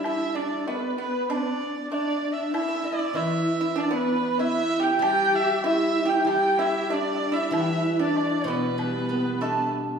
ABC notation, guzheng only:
X:1
M:4/4
L:1/8
Q:1/4=96
K:none
V:1 name="Guzheng" clef=bass
[G,DG]2 z6 | z2 E,6 | G,4 G,4 | E,3 B,, G, B, D2 |]